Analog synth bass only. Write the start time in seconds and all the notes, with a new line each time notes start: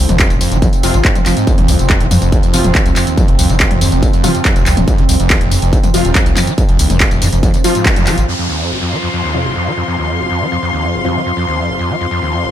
0.09 F1
0.30 D#1
0.41 F2
0.52 F1
0.83 F1
0.94 G#1
1.26 F1
1.58 F1
1.69 C2
1.79 F1
2.01 D#1
2.11 F2
2.22 F1
2.54 F1
2.65 D#1
2.86 C2
3.28 F1
3.39 C2
3.50 F1
3.71 D#1
3.81 F2
3.92 F1
4.56 F1
4.66 C2
4.77 D#1
4.99 F1
5.09 C2
5.20 F1
5.41 D#1
5.52 F2
5.62 F1
5.94 F1
6.05 D#1
6.26 C2
6.69 F1
6.79 C2
6.90 F1
7.11 D#1
7.22 F2
7.33 F1
8.18 G#1